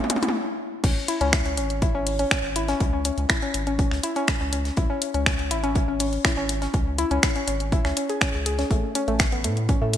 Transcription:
0.04 mid tom
0.10 C#4, closed hi-hat, mid tom
0.16 mid tom
0.23 E4, closed hi-hat, mid tom
0.29 mid tom
0.84 C#2 C#4 C#5, kick, closed hi-hat, crash
1.08 E4 E5, closed hi-hat
1.21 C#2 C#4 C#5, closed hi-hat
1.33 finger snap, kick, snare, closed hi-hat
1.45 C#4 C#5, closed hi-hat
1.57 G#1 C#4 C#5, closed hi-hat
1.70 closed hi-hat
1.82 E4 E5, kick, closed hi-hat
1.95 G#1 C#4 C#5
2.07 closed hi-hat, open hi-hat
2.19 C#4 C#5, closed hi-hat
2.31 C#4, finger snap, kick, snare, closed hi-hat
2.44 G#1
2.56 E4 E5, closed hi-hat
2.68 C#4 C#5, snare, closed hi-hat
2.80 C#2, kick, closed hi-hat
2.93 C#4 C#5
3.05 C#4 C#5, closed hi-hat
3.18 C#2, closed hi-hat
3.29 E4 E5, finger snap, kick, snare, closed hi-hat
3.42 C#4 C#5, closed hi-hat
3.54 G#1, closed hi-hat
3.67 C#4 C#5, closed hi-hat
3.79 C#4 C#5, kick, closed hi-hat
3.91 C#2, finger snap, snare
4.03 E4 E5, closed hi-hat
4.16 C#4 C#5, closed hi-hat
4.28 finger snap, kick, snare, closed hi-hat
4.41 C#2 C#4 C#5
4.53 C#4 C#5, closed hi-hat
4.65 snare, closed hi-hat
4.77 C#2 E4 E5, kick, closed hi-hat
4.90 C#4 C#5
5.02 closed hi-hat
5.14 C#2 C#4 C#5, closed hi-hat
5.26 C#4, finger snap, kick, snare, closed hi-hat
5.39 closed hi-hat
5.51 G#1 E4 E5, closed hi-hat
5.64 C#4 C#5, closed hi-hat
5.75 kick, closed hi-hat
5.88 G#1 C#4 C#5
5.99 C#4 C#5, closed hi-hat, open hi-hat
6.13 closed hi-hat
6.25 E4 E5, finger snap, kick, snare, closed hi-hat
6.37 G#1 C#4 C#5
6.49 closed hi-hat
6.61 C#4 C#5, snare, closed hi-hat
6.74 C#2 C#4 C#5, kick, closed hi-hat
6.98 E4 E5, closed hi-hat
7.11 C#2 C#4 C#5, closed hi-hat
7.23 finger snap, kick, snare, closed hi-hat
7.36 C#4 C#5, closed hi-hat
7.48 G#1 C#4 C#5, closed hi-hat
7.60 closed hi-hat
7.72 E4 E5, kick, closed hi-hat
7.85 C#2 C#4 C#5, finger snap, snare
7.97 C#4 C#5, closed hi-hat
8.09 G#4 G#5, closed hi-hat
8.21 C#4 C#5, finger snap, kick, snare, closed hi-hat
8.34 C#2
8.46 G#4 G#5, closed hi-hat
8.59 C#4 C#5, snare, closed hi-hat
8.71 A1 A3 A4, kick, closed hi-hat
8.95 C#4 C#5, closed hi-hat
9.08 A1 A3 A4, closed hi-hat
9.19 finger snap, kick, snare, closed hi-hat
9.32 B3 B4, closed hi-hat
9.44 A2 A3 A4, closed hi-hat
9.57 closed hi-hat
9.69 C#4 C#5, kick, closed hi-hat
9.82 A2 A3 A4
9.94 closed hi-hat, open hi-hat

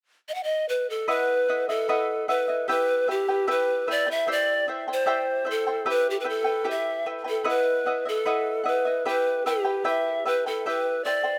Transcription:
0.29 D#5
0.35 F#5
0.43 D#5
0.69 B4
0.90 A4
1.08 E4 B4 D#5 E5 F#5
1.48 E4 D#5 E5 F#5
1.69 E4 A4 D#5 E5
1.89 E4 B4 D#5 E5 F#5
2.28 E4 B4 D#5 E5 F#5
2.48 E4 D#5 E5
2.68 E4 G4 B4 E5 G5
3.08 E4 G4 B4 E5 G5
3.29 E4 B4 G5
3.47 E4 G4 B4 E5 G5
3.88 E4 B4 D5 E5 G5
4.07 E4 B4 G5
4.11 E5
4.27 E4 G4 C5 E5 G5
4.32 D5
4.68 E4 C5 E5 G5
4.88 E4 C5 G5
4.93 C5
5.06 E4 G4 C5 E5 G5
5.45 E4 C5 E5 G5
5.51 A4
5.67 E4 C5 G5
5.86 E4 G4 B4 E5 G5
6.10 G4
6.20 B4
6.24 E4 B4 E5 G5
6.29 A4
6.44 E4 B4 G5
6.64 E4 G4 B4 E5 G5
6.71 E5
7.06 E4 B4 E5 G5
7.24 E4 B4 G5
7.29 A4
7.44 E4 B4 D#5 E5 F#5
7.49 B4
7.86 E4 D#5 E5 F#5
8.05 E4 A4 D#5 E5
8.25 E4 B4 D#5 E5 F#5
8.64 E4 B4 D#5 E5 F#5
8.85 E4 D#5 E5
9.05 E4 G4 B4 E5 G5
9.46 E4 G4 B4 E5 G5
9.65 E4 B4 G5
9.84 E4 G4 B4 E5 G5
10.25 E4 B4 E5 G5
10.46 E4 A4 B4 G5
10.66 E4 G4 B4 E5 G5
11.05 E4 C5 D5 E5 G5
11.23 E4 C5 G5

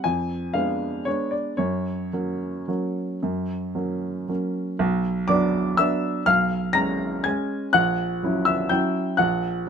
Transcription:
0.04 F2 G#5
0.54 G#3 B3 D4 F5
1.05 G#3 B3 D4 C#5
1.31 D5
1.57 F#2 C#5
2.13 F#3 A#3 C#4
2.68 F#3 A#3 C#4
3.23 F#2
3.75 F#3 A#3 C#4
4.28 F#3 A#3 C#4
4.79 B1
5.28 F#3 B3 D4 D5 D6
5.77 F#3 B3 D4 E5 E6
6.26 B1 F5 F6
6.73 G#3 C#4 A#5 A#6
7.24 G#3 C#4 G#5 G#6
7.73 A#1 F#5 F#6
8.23 F#3 C#4 E4
8.45 E5 E6
8.69 F#3 C#4 E4 G5 G6
9.17 A#1 F#5 F#6

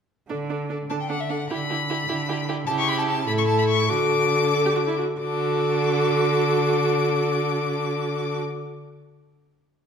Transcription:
0.29 D3 D4 A4
0.50 D4 A4
0.70 D4 A4
0.90 D3 D4 A4 A5
1.00 G5
1.09 D4 A4 F#5
1.20 E5
1.29 D4 A4 F#5
1.50 D3 E4 G4 B5
1.70 E4 G4
1.90 E4 G4
2.09 D3 E4 G4
2.29 E4 G4
2.48 E4 G4
2.67 C#3 E4 G4 A5
2.79 C#6
2.88 B5
2.98 A5
3.07 A5
3.27 A2 E4 A4 B5
3.38 C#6
3.47 A5
3.58 B5
3.68 C#6
3.88 D3 F#4 A4 D6
4.54 A4
4.65 G4
4.75 F#4
4.87 E4
4.98 F#4
5.20 D3 F#4 A4 D6

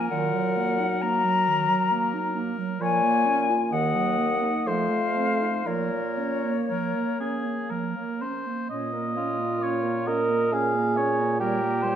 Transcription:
Already playing: A#3 A#4
0.09 A#2 D#3 F#3 F#5
0.33 F#3
0.56 A#3
0.79 D#4
1.01 A#3 A#5
1.25 F#3
1.48 D#3
1.69 F#3
1.91 A#3
2.14 D#4
2.35 A#3
2.58 F#3
2.80 A#2 F3 A#3 C#5 G#5
3.03 A#3
3.26 C#4
3.50 F4
3.72 D#2 D#3 D#5 F#5
3.95 F#3
4.18 A#3
4.42 D#4
4.66 F2 F3 A3 C5 F5
4.90 A3
5.16 C4
5.41 D#4
5.66 A#2 F3 A#3 A#4 C#5
5.92 A#3
6.18 C#4
6.45 A#3
6.70 F3 A#4
6.95 A#3
7.20 C#4 G#4
7.45 A#3
7.70 F3 A#4
7.96 A#3
8.21 C#4 C5
8.47 A#3
8.70 A#2 C#4 C#5 D#5
8.92 A#3 A#4
9.14 C#4 F4 C#5
9.38 A#3 A#4
9.60 C#4 C#5
9.82 A#3 A#4
10.06 C#4 A#4 C#5 D#5
10.29 A#3 A#4
10.52 C#4 G#4 C#5 F5
10.75 A#3 A#4
10.96 C#4 C#5
11.18 A#3 A#4
11.39 G3 G4 A#4 C#5
11.62 A#3 A#4
11.82 G3 C5 C#5

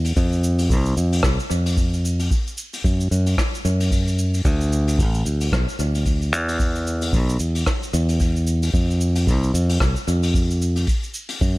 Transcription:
Already playing: E2
0.04 open hi-hat, cabasa
0.16 F2, kick, open hi-hat, cabasa
0.32 cabasa
0.44 cabasa
0.59 open hi-hat, cabasa
0.70 C2, kick, open hi-hat, cabasa
0.86 cabasa
0.97 F2, cabasa
1.12 open hi-hat, cabasa
1.23 C2, kick, cross-stick, open hi-hat, cabasa
1.40 cabasa
1.50 F2, cabasa
1.66 open hi-hat, cabasa
1.77 kick, open hi-hat, cabasa
1.94 cabasa
2.05 cabasa
2.19 open hi-hat, cabasa
2.31 kick, open hi-hat, cabasa
2.47 cabasa
2.58 cabasa
2.73 open hi-hat, cabasa
2.84 F#2, kick, open hi-hat, cabasa
3.00 cabasa
3.11 F#2, cabasa
3.26 open hi-hat, cabasa
3.38 kick, cross-stick, open hi-hat, cabasa
3.55 cabasa
3.65 F#2, cabasa
3.80 open hi-hat, cabasa
3.91 kick, open hi-hat, cabasa
4.08 cabasa
4.19 cabasa
4.34 open hi-hat, cabasa
4.45 D2, kick, open hi-hat, cabasa
4.61 cabasa
4.73 cabasa
4.87 open hi-hat, cabasa
4.99 A1, kick, open hi-hat, cabasa
5.14 cabasa
5.25 D2, cabasa
5.41 open hi-hat, cabasa
5.52 B1, kick, cross-stick, open hi-hat, cabasa
5.69 cabasa
5.79 D2, cabasa
5.95 open hi-hat, cabasa
6.05 kick, open hi-hat, cabasa
6.22 cabasa
6.32 E2, cabasa
6.48 open hi-hat, cabasa
6.59 kick, open hi-hat, cabasa
6.75 cabasa
6.87 cabasa
7.02 open hi-hat, cabasa
7.13 B1, kick, open hi-hat, cabasa
7.29 cabasa
7.40 E2, cabasa
7.55 open hi-hat, cabasa
7.66 kick, cross-stick, open hi-hat, cabasa
7.83 cabasa
7.93 E2, cabasa
8.09 open hi-hat, cabasa
8.20 kick, open hi-hat, cabasa
8.36 cabasa
8.47 cabasa
8.63 open hi-hat, cabasa
8.74 F2, kick, open hi-hat, cabasa
8.91 cabasa
9.01 cabasa
9.15 open hi-hat, cabasa
9.27 C2, kick, open hi-hat, cabasa
9.43 cabasa
9.54 F2, cabasa
9.69 open hi-hat, cabasa
9.80 C2, kick, cross-stick, open hi-hat, cabasa
9.96 cabasa
10.08 F2, cabasa
10.23 open hi-hat, cabasa
10.34 kick, open hi-hat, cabasa
10.51 cabasa
10.62 cabasa
10.76 open hi-hat, cabasa
10.87 kick, open hi-hat, cabasa
11.04 cabasa
11.14 cabasa
11.29 open hi-hat, cabasa
11.41 F#2, kick, open hi-hat, cabasa

